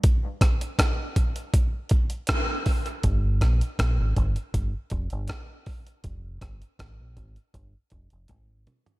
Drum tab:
HH |x-xxx-xxx-xxx-ox|x-xxx-xxx-xxx-ox|x-xxx-xxx-xxx-xx|
SD |--r-r-------r---|--r-r-------r---|--r-r-----------|
T1 |----------------|----------------|------------o---|
T2 |----------------|----------------|--------------o-|
FT |----------------|----------------|---------------o|
BD |o-o-o-o-o-o-o-o-|o-o-o-o-o-o-o-o-|o-o-o-o-o-o-o---|